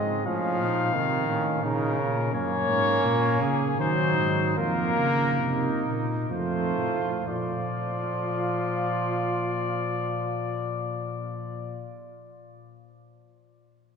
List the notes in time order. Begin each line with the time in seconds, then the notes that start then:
Already playing: G#2 G#3 C4 D#5
0.26 A2 F3 C#4 F5
0.60 A#2 D#4
0.95 C3 D#3 F4
1.29 A2 C#4
1.64 A#2 C#3 D#4 A#4
1.98 A#2 C#4
2.33 F#2 A#3 C#4 C#5
2.69 G#2
3.05 A#2
3.41 C#3 G#4
3.78 D#3 F#3 D#4 C5
4.18 G#2
4.57 F2 A#3 F4 A#4
4.98 C#3
5.40 C3 D#4
5.84 A#2
6.30 F2 A3 F4 C5
6.77 A2
7.27 A#2 F3 F4 D5